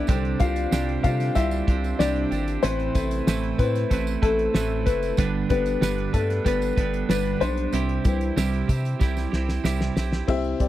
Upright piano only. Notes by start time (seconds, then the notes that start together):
Already playing: D4 E4 D5 E5
0.08 D3 G3 C4
0.40 F4 F5
1.03 D3 G3 C4 F4 F5
1.35 E4 E5
1.99 D4 D5
2.63 C4 C5
2.94 C3 A3
3.58 C4 B4
4.22 A3 A4
4.86 B4
5.50 D3 G3 B3 B4
6.13 A3 A4
6.45 B3 B4
7.09 B3 B4
7.41 D4 C5
8.05 E3 G3 C4
10.28 C3 C4 E4 G4 E5
10.59 C4 E4 G4 D5